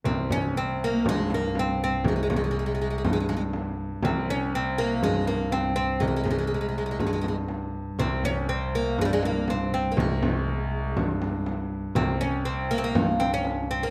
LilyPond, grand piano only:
\new Staff \with { instrumentName = "Grand piano" } { \clef bass \time 4/4 \tempo 4 = 121 c,2 g,2 | c,2 g,2 | c,2 g,2 | c,2 g,2 |
c,2 g,2 | c,2 g,2 | c,2 g,2 | }